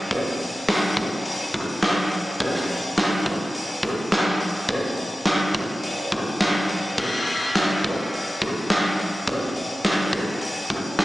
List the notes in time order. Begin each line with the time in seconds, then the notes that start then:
0.11 kick, open hi-hat
0.40 open hi-hat
0.69 snare, open hi-hat
0.97 kick, open hi-hat
1.25 open hi-hat
1.54 kick, open hi-hat
1.83 snare, open hi-hat
2.11 open hi-hat
2.40 kick, open hi-hat
2.55 snare
2.69 open hi-hat
2.98 snare, open hi-hat
3.26 kick, open hi-hat
3.55 open hi-hat
3.83 kick, open hi-hat
4.12 snare, open hi-hat
4.40 open hi-hat
4.69 kick, open hi-hat
4.97 open hi-hat
5.26 snare, open hi-hat
5.54 kick, open hi-hat
5.83 open hi-hat
6.12 kick, open hi-hat
6.41 snare, open hi-hat
6.69 open hi-hat
6.98 kick, crash
7.27 open hi-hat
7.55 snare, open hi-hat
7.84 kick, open hi-hat
8.14 open hi-hat
8.42 kick, open hi-hat
8.70 snare, open hi-hat
8.99 open hi-hat
9.28 kick, open hi-hat
9.56 open hi-hat
9.85 snare, open hi-hat
10.13 kick, open hi-hat
10.41 open hi-hat
10.70 kick, open hi-hat
10.99 snare, open hi-hat